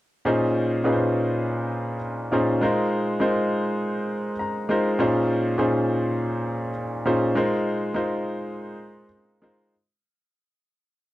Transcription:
grand piano
0.25 A#2 C#4 D#4 F4 G#4 C5
0.84 A#2 C#4 D#4 F4 G#4 B4
0.92 C5
2.32 A#2 C#4 D#4 F4 G#4 C5
2.61 G#3 D#4 F4 A#4 C5
3.20 G#3 D#4 F4 A#4 C5
4.39 A#5
4.69 G#3 D#4 F4 A#4 C5
4.99 A#2 C#4 D#4 F4 G#4 C5
5.58 A#2 C#4 D#4 F4 G#4 C5
7.05 A#2 C#4 D#4 F4 G#4 C5
7.35 G#3 D#4 F4 A#4 C5
7.94 G#3 D#4 F4 A#4 C5
9.42 G#3 D#4 F4 A#4 C5

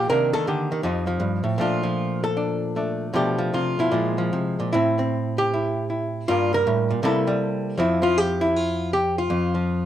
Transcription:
hollow-body jazz guitar
0.09 C3 D#3 A#3 D4 A#4
0.33 D#3 A4
0.47 D3 G4
0.72 D#3
0.83 F2 F3 C4 D#4
1.07 F3
1.20 G2
1.44 A2
1.58 A#2 F3 A3 D4 F4
1.83 F3
2.24 A4
2.37 D4
2.76 A3 D4
3.14 B2 F3 A3 D4 G4
3.38 F3
3.54 C3 F4
3.79 B2 E4
3.91 A#2 F3 G#3
4.18 F3
4.33 C3
4.60 A#2
4.73 A2 C4 E4
4.99 C4
5.38 G4
5.54 E4
5.90 E4
6.28 G2 G3 A#3 D4 F4
6.53 G3 A#4
6.67 A2
6.90 A#2
7.03 C3 G3 A#3 E4 A4
7.27 G3
7.78 F2 F3 C4 E4
8.02 F3 F4
8.18 G4
8.41 E4
8.56 F4
8.93 G4
9.18 F4
9.30 F2
9.55 F3

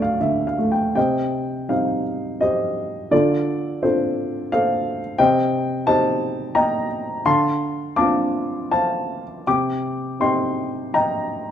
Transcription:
grand piano
Already playing: D2 D3 A3 C4 G4 D5
0.02 F5
0.20 D3 E5
0.47 F5
0.58 A3
0.72 G5
0.95 C3 C5 D#5 G5
1.69 G3 C4 D#4 C5 F5
2.41 G4 C5 D#5
3.11 D3 F4 A4 D5
3.83 C4 D4 F4 A4 C5
4.52 A4 C5 F5
5.18 C3 C5 D#5 G5
5.87 C4 D#4 G4 C5 D#5 A5
6.55 D#5 G5 A#5
7.26 D3 F5 A5 C6
7.96 C4 D4 F4 F5 A5 D6
8.71 C5 F5 A5
9.47 C3 G5 D6
10.20 C4 D#4 G4 D#5 G5 C6
10.94 D#5 G5 A#5

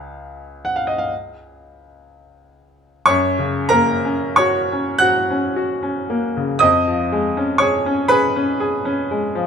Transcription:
grand piano
Already playing: C#2 G#3 C#4 G#4 F5
0.65 F#5
0.76 F5
0.87 D#5
0.98 F5
3.06 F#2 C#5 C#6
3.39 C#3
3.69 A#3 A#4 A#5
4.05 C#4
4.36 F#4 C#5 C#6
4.72 C#4
4.98 F#4 F#5 F#6
5.30 C#4
5.56 F#4
5.83 C#4
6.10 A#3
6.37 C#3
6.59 F2 D#5 D#6
6.88 F3
7.12 G#3
7.37 C#4
7.58 G#4 C#5 C#6
7.86 C#4
8.08 G#4 B4 B5
8.36 C#4
8.60 G#4
8.85 C#4
9.11 G#3
9.35 F3

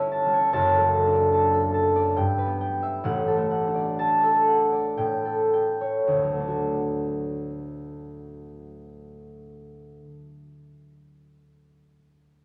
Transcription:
harp
Already playing: G1 G2 G3 E4 C#5 E5 A5
0.00 C#4
0.12 A5
0.26 G3
0.34 C#5
0.53 F#1 F#2 A5
0.74 A4
0.80 F#3
0.93 A5
1.07 D4
1.13 D5
1.33 A5
1.53 A4
1.74 A5
1.96 D5
2.16 G2 G5
2.38 B4
2.46 B3
2.61 G5
2.82 E5
3.04 A1 A2 F#5
3.27 A4
3.36 A3
3.51 F#5
3.67 D4
3.75 D5
3.99 A5
4.24 A4
4.47 F#5
4.72 D5
4.97 A2 G5
5.25 A4
5.53 G5
5.81 C#5
6.07 D2
6.16 A2
6.23 F#3
6.32 A3
6.40 D4
6.48 F#4

